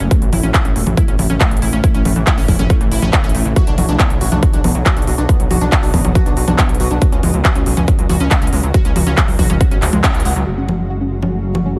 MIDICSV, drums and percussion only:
0, 0, Header, 1, 2, 480
1, 0, Start_track
1, 0, Key_signature, 3, "minor"
1, 0, Tempo, 431655
1, 122, Time_signature, 4, 2, 24, 8
1, 13110, End_track
2, 0, Start_track
2, 0, Title_t, "Drums"
2, 3, Note_on_c, 9, 42, 52
2, 115, Note_off_c, 9, 42, 0
2, 123, Note_on_c, 9, 36, 123
2, 123, Note_on_c, 9, 42, 77
2, 234, Note_off_c, 9, 42, 0
2, 235, Note_off_c, 9, 36, 0
2, 244, Note_on_c, 9, 42, 50
2, 355, Note_off_c, 9, 42, 0
2, 363, Note_on_c, 9, 46, 110
2, 363, Note_on_c, 9, 63, 77
2, 474, Note_off_c, 9, 46, 0
2, 474, Note_off_c, 9, 63, 0
2, 483, Note_on_c, 9, 42, 50
2, 595, Note_off_c, 9, 42, 0
2, 603, Note_on_c, 9, 36, 120
2, 603, Note_on_c, 9, 39, 121
2, 603, Note_on_c, 9, 42, 77
2, 714, Note_off_c, 9, 36, 0
2, 715, Note_off_c, 9, 39, 0
2, 715, Note_off_c, 9, 42, 0
2, 724, Note_on_c, 9, 42, 50
2, 835, Note_off_c, 9, 42, 0
2, 844, Note_on_c, 9, 46, 110
2, 955, Note_off_c, 9, 46, 0
2, 964, Note_on_c, 9, 42, 51
2, 964, Note_on_c, 9, 63, 77
2, 1075, Note_off_c, 9, 42, 0
2, 1075, Note_off_c, 9, 63, 0
2, 1083, Note_on_c, 9, 36, 122
2, 1084, Note_on_c, 9, 42, 76
2, 1194, Note_off_c, 9, 36, 0
2, 1195, Note_off_c, 9, 42, 0
2, 1204, Note_on_c, 9, 42, 48
2, 1315, Note_off_c, 9, 42, 0
2, 1324, Note_on_c, 9, 46, 111
2, 1324, Note_on_c, 9, 63, 76
2, 1435, Note_off_c, 9, 46, 0
2, 1435, Note_off_c, 9, 63, 0
2, 1444, Note_on_c, 9, 42, 49
2, 1555, Note_off_c, 9, 42, 0
2, 1563, Note_on_c, 9, 36, 122
2, 1563, Note_on_c, 9, 39, 121
2, 1563, Note_on_c, 9, 42, 76
2, 1674, Note_off_c, 9, 36, 0
2, 1674, Note_off_c, 9, 39, 0
2, 1674, Note_off_c, 9, 42, 0
2, 1684, Note_on_c, 9, 42, 47
2, 1743, Note_off_c, 9, 42, 0
2, 1743, Note_on_c, 9, 42, 63
2, 1803, Note_on_c, 9, 46, 109
2, 1854, Note_off_c, 9, 42, 0
2, 1915, Note_off_c, 9, 46, 0
2, 1923, Note_on_c, 9, 42, 51
2, 2035, Note_off_c, 9, 42, 0
2, 2043, Note_on_c, 9, 36, 121
2, 2043, Note_on_c, 9, 42, 73
2, 2154, Note_off_c, 9, 36, 0
2, 2154, Note_off_c, 9, 42, 0
2, 2163, Note_on_c, 9, 42, 51
2, 2274, Note_off_c, 9, 42, 0
2, 2284, Note_on_c, 9, 46, 107
2, 2284, Note_on_c, 9, 63, 81
2, 2395, Note_off_c, 9, 46, 0
2, 2395, Note_off_c, 9, 63, 0
2, 2403, Note_on_c, 9, 42, 48
2, 2514, Note_off_c, 9, 42, 0
2, 2523, Note_on_c, 9, 36, 119
2, 2523, Note_on_c, 9, 39, 116
2, 2523, Note_on_c, 9, 42, 73
2, 2634, Note_off_c, 9, 36, 0
2, 2634, Note_off_c, 9, 39, 0
2, 2634, Note_off_c, 9, 42, 0
2, 2643, Note_on_c, 9, 46, 63
2, 2754, Note_off_c, 9, 46, 0
2, 2763, Note_on_c, 9, 36, 62
2, 2763, Note_on_c, 9, 46, 108
2, 2763, Note_on_c, 9, 63, 62
2, 2874, Note_off_c, 9, 36, 0
2, 2874, Note_off_c, 9, 46, 0
2, 2874, Note_off_c, 9, 63, 0
2, 2883, Note_on_c, 9, 42, 49
2, 2883, Note_on_c, 9, 63, 80
2, 2995, Note_off_c, 9, 42, 0
2, 2995, Note_off_c, 9, 63, 0
2, 3002, Note_on_c, 9, 42, 72
2, 3003, Note_on_c, 9, 36, 126
2, 3113, Note_off_c, 9, 42, 0
2, 3114, Note_off_c, 9, 36, 0
2, 3123, Note_on_c, 9, 42, 48
2, 3234, Note_off_c, 9, 42, 0
2, 3242, Note_on_c, 9, 46, 105
2, 3354, Note_off_c, 9, 46, 0
2, 3362, Note_on_c, 9, 42, 48
2, 3362, Note_on_c, 9, 63, 76
2, 3473, Note_off_c, 9, 42, 0
2, 3473, Note_off_c, 9, 63, 0
2, 3482, Note_on_c, 9, 39, 117
2, 3482, Note_on_c, 9, 42, 73
2, 3483, Note_on_c, 9, 36, 118
2, 3593, Note_off_c, 9, 39, 0
2, 3593, Note_off_c, 9, 42, 0
2, 3594, Note_off_c, 9, 36, 0
2, 3602, Note_on_c, 9, 42, 46
2, 3663, Note_off_c, 9, 42, 0
2, 3663, Note_on_c, 9, 42, 61
2, 3722, Note_on_c, 9, 46, 107
2, 3774, Note_off_c, 9, 42, 0
2, 3833, Note_off_c, 9, 46, 0
2, 3843, Note_on_c, 9, 42, 49
2, 3954, Note_off_c, 9, 42, 0
2, 3962, Note_on_c, 9, 42, 75
2, 3963, Note_on_c, 9, 36, 116
2, 4073, Note_off_c, 9, 42, 0
2, 4074, Note_off_c, 9, 36, 0
2, 4082, Note_on_c, 9, 42, 50
2, 4193, Note_off_c, 9, 42, 0
2, 4202, Note_on_c, 9, 46, 105
2, 4202, Note_on_c, 9, 63, 83
2, 4314, Note_off_c, 9, 46, 0
2, 4314, Note_off_c, 9, 63, 0
2, 4322, Note_on_c, 9, 42, 50
2, 4434, Note_off_c, 9, 42, 0
2, 4443, Note_on_c, 9, 36, 115
2, 4443, Note_on_c, 9, 39, 111
2, 4443, Note_on_c, 9, 42, 77
2, 4554, Note_off_c, 9, 36, 0
2, 4554, Note_off_c, 9, 39, 0
2, 4554, Note_off_c, 9, 42, 0
2, 4563, Note_on_c, 9, 42, 50
2, 4674, Note_off_c, 9, 42, 0
2, 4682, Note_on_c, 9, 46, 107
2, 4793, Note_off_c, 9, 46, 0
2, 4803, Note_on_c, 9, 42, 51
2, 4803, Note_on_c, 9, 63, 81
2, 4914, Note_off_c, 9, 42, 0
2, 4914, Note_off_c, 9, 63, 0
2, 4922, Note_on_c, 9, 36, 116
2, 4923, Note_on_c, 9, 42, 77
2, 5034, Note_off_c, 9, 36, 0
2, 5034, Note_off_c, 9, 42, 0
2, 5043, Note_on_c, 9, 42, 50
2, 5154, Note_off_c, 9, 42, 0
2, 5163, Note_on_c, 9, 46, 101
2, 5163, Note_on_c, 9, 63, 82
2, 5274, Note_off_c, 9, 46, 0
2, 5274, Note_off_c, 9, 63, 0
2, 5283, Note_on_c, 9, 42, 50
2, 5394, Note_off_c, 9, 42, 0
2, 5403, Note_on_c, 9, 36, 119
2, 5403, Note_on_c, 9, 39, 110
2, 5403, Note_on_c, 9, 42, 74
2, 5514, Note_off_c, 9, 36, 0
2, 5514, Note_off_c, 9, 39, 0
2, 5514, Note_off_c, 9, 42, 0
2, 5523, Note_on_c, 9, 42, 46
2, 5583, Note_off_c, 9, 42, 0
2, 5583, Note_on_c, 9, 42, 62
2, 5643, Note_on_c, 9, 46, 102
2, 5694, Note_off_c, 9, 42, 0
2, 5754, Note_off_c, 9, 46, 0
2, 5763, Note_on_c, 9, 42, 49
2, 5875, Note_off_c, 9, 42, 0
2, 5883, Note_on_c, 9, 36, 109
2, 5884, Note_on_c, 9, 42, 76
2, 5994, Note_off_c, 9, 36, 0
2, 5995, Note_off_c, 9, 42, 0
2, 6004, Note_on_c, 9, 42, 52
2, 6115, Note_off_c, 9, 42, 0
2, 6124, Note_on_c, 9, 46, 103
2, 6124, Note_on_c, 9, 63, 83
2, 6235, Note_off_c, 9, 46, 0
2, 6235, Note_off_c, 9, 63, 0
2, 6244, Note_on_c, 9, 42, 51
2, 6355, Note_off_c, 9, 42, 0
2, 6363, Note_on_c, 9, 36, 112
2, 6364, Note_on_c, 9, 39, 111
2, 6364, Note_on_c, 9, 42, 77
2, 6474, Note_off_c, 9, 36, 0
2, 6475, Note_off_c, 9, 39, 0
2, 6475, Note_off_c, 9, 42, 0
2, 6484, Note_on_c, 9, 46, 60
2, 6595, Note_off_c, 9, 46, 0
2, 6603, Note_on_c, 9, 36, 58
2, 6604, Note_on_c, 9, 46, 105
2, 6604, Note_on_c, 9, 63, 64
2, 6714, Note_off_c, 9, 36, 0
2, 6715, Note_off_c, 9, 46, 0
2, 6715, Note_off_c, 9, 63, 0
2, 6724, Note_on_c, 9, 42, 52
2, 6724, Note_on_c, 9, 63, 83
2, 6835, Note_off_c, 9, 42, 0
2, 6835, Note_off_c, 9, 63, 0
2, 6842, Note_on_c, 9, 36, 113
2, 6843, Note_on_c, 9, 42, 80
2, 6954, Note_off_c, 9, 36, 0
2, 6954, Note_off_c, 9, 42, 0
2, 6963, Note_on_c, 9, 42, 51
2, 7074, Note_off_c, 9, 42, 0
2, 7082, Note_on_c, 9, 46, 103
2, 7193, Note_off_c, 9, 46, 0
2, 7202, Note_on_c, 9, 42, 51
2, 7202, Note_on_c, 9, 63, 83
2, 7313, Note_off_c, 9, 42, 0
2, 7313, Note_off_c, 9, 63, 0
2, 7322, Note_on_c, 9, 39, 111
2, 7322, Note_on_c, 9, 42, 77
2, 7323, Note_on_c, 9, 36, 115
2, 7433, Note_off_c, 9, 39, 0
2, 7433, Note_off_c, 9, 42, 0
2, 7434, Note_off_c, 9, 36, 0
2, 7442, Note_on_c, 9, 42, 49
2, 7501, Note_off_c, 9, 42, 0
2, 7501, Note_on_c, 9, 42, 63
2, 7561, Note_on_c, 9, 46, 102
2, 7613, Note_off_c, 9, 42, 0
2, 7672, Note_off_c, 9, 46, 0
2, 7681, Note_on_c, 9, 42, 50
2, 7793, Note_off_c, 9, 42, 0
2, 7802, Note_on_c, 9, 42, 81
2, 7803, Note_on_c, 9, 36, 112
2, 7913, Note_off_c, 9, 42, 0
2, 7914, Note_off_c, 9, 36, 0
2, 7922, Note_on_c, 9, 42, 55
2, 8034, Note_off_c, 9, 42, 0
2, 8042, Note_on_c, 9, 46, 101
2, 8042, Note_on_c, 9, 63, 82
2, 8153, Note_off_c, 9, 46, 0
2, 8153, Note_off_c, 9, 63, 0
2, 8161, Note_on_c, 9, 42, 53
2, 8272, Note_off_c, 9, 42, 0
2, 8281, Note_on_c, 9, 39, 116
2, 8281, Note_on_c, 9, 42, 81
2, 8283, Note_on_c, 9, 36, 113
2, 8393, Note_off_c, 9, 39, 0
2, 8393, Note_off_c, 9, 42, 0
2, 8394, Note_off_c, 9, 36, 0
2, 8401, Note_on_c, 9, 42, 55
2, 8512, Note_off_c, 9, 42, 0
2, 8521, Note_on_c, 9, 46, 99
2, 8632, Note_off_c, 9, 46, 0
2, 8641, Note_on_c, 9, 42, 54
2, 8641, Note_on_c, 9, 63, 82
2, 8753, Note_off_c, 9, 42, 0
2, 8753, Note_off_c, 9, 63, 0
2, 8761, Note_on_c, 9, 42, 79
2, 8762, Note_on_c, 9, 36, 112
2, 8872, Note_off_c, 9, 42, 0
2, 8874, Note_off_c, 9, 36, 0
2, 8882, Note_on_c, 9, 42, 53
2, 8993, Note_off_c, 9, 42, 0
2, 9001, Note_on_c, 9, 46, 99
2, 9001, Note_on_c, 9, 63, 81
2, 9112, Note_off_c, 9, 46, 0
2, 9112, Note_off_c, 9, 63, 0
2, 9121, Note_on_c, 9, 42, 53
2, 9232, Note_off_c, 9, 42, 0
2, 9241, Note_on_c, 9, 39, 116
2, 9241, Note_on_c, 9, 42, 81
2, 9242, Note_on_c, 9, 36, 112
2, 9352, Note_off_c, 9, 39, 0
2, 9352, Note_off_c, 9, 42, 0
2, 9353, Note_off_c, 9, 36, 0
2, 9361, Note_on_c, 9, 42, 52
2, 9421, Note_off_c, 9, 42, 0
2, 9421, Note_on_c, 9, 42, 66
2, 9482, Note_on_c, 9, 46, 100
2, 9533, Note_off_c, 9, 42, 0
2, 9593, Note_off_c, 9, 46, 0
2, 9601, Note_on_c, 9, 42, 53
2, 9712, Note_off_c, 9, 42, 0
2, 9721, Note_on_c, 9, 42, 82
2, 9722, Note_on_c, 9, 36, 114
2, 9832, Note_off_c, 9, 42, 0
2, 9833, Note_off_c, 9, 36, 0
2, 9841, Note_on_c, 9, 42, 57
2, 9952, Note_off_c, 9, 42, 0
2, 9962, Note_on_c, 9, 46, 102
2, 9962, Note_on_c, 9, 63, 78
2, 10073, Note_off_c, 9, 46, 0
2, 10073, Note_off_c, 9, 63, 0
2, 10082, Note_on_c, 9, 42, 54
2, 10193, Note_off_c, 9, 42, 0
2, 10202, Note_on_c, 9, 36, 114
2, 10202, Note_on_c, 9, 39, 122
2, 10202, Note_on_c, 9, 42, 84
2, 10313, Note_off_c, 9, 36, 0
2, 10313, Note_off_c, 9, 39, 0
2, 10313, Note_off_c, 9, 42, 0
2, 10322, Note_on_c, 9, 46, 60
2, 10433, Note_off_c, 9, 46, 0
2, 10442, Note_on_c, 9, 36, 59
2, 10442, Note_on_c, 9, 46, 101
2, 10442, Note_on_c, 9, 63, 61
2, 10553, Note_off_c, 9, 36, 0
2, 10553, Note_off_c, 9, 46, 0
2, 10553, Note_off_c, 9, 63, 0
2, 10562, Note_on_c, 9, 42, 54
2, 10562, Note_on_c, 9, 63, 78
2, 10673, Note_off_c, 9, 42, 0
2, 10673, Note_off_c, 9, 63, 0
2, 10682, Note_on_c, 9, 36, 119
2, 10682, Note_on_c, 9, 42, 83
2, 10793, Note_off_c, 9, 42, 0
2, 10794, Note_off_c, 9, 36, 0
2, 10802, Note_on_c, 9, 42, 53
2, 10913, Note_off_c, 9, 42, 0
2, 10922, Note_on_c, 9, 39, 63
2, 10922, Note_on_c, 9, 46, 103
2, 11033, Note_off_c, 9, 39, 0
2, 11033, Note_off_c, 9, 46, 0
2, 11042, Note_on_c, 9, 42, 55
2, 11042, Note_on_c, 9, 63, 80
2, 11153, Note_off_c, 9, 42, 0
2, 11153, Note_off_c, 9, 63, 0
2, 11162, Note_on_c, 9, 36, 116
2, 11162, Note_on_c, 9, 39, 117
2, 11162, Note_on_c, 9, 42, 86
2, 11273, Note_off_c, 9, 36, 0
2, 11273, Note_off_c, 9, 39, 0
2, 11273, Note_off_c, 9, 42, 0
2, 11282, Note_on_c, 9, 42, 52
2, 11342, Note_off_c, 9, 42, 0
2, 11342, Note_on_c, 9, 42, 69
2, 11401, Note_on_c, 9, 46, 105
2, 11453, Note_off_c, 9, 42, 0
2, 11513, Note_off_c, 9, 46, 0
2, 11522, Note_on_c, 9, 42, 55
2, 11633, Note_off_c, 9, 42, 0
2, 11882, Note_on_c, 9, 63, 68
2, 11994, Note_off_c, 9, 63, 0
2, 12482, Note_on_c, 9, 63, 67
2, 12593, Note_off_c, 9, 63, 0
2, 12843, Note_on_c, 9, 63, 67
2, 12954, Note_off_c, 9, 63, 0
2, 13110, End_track
0, 0, End_of_file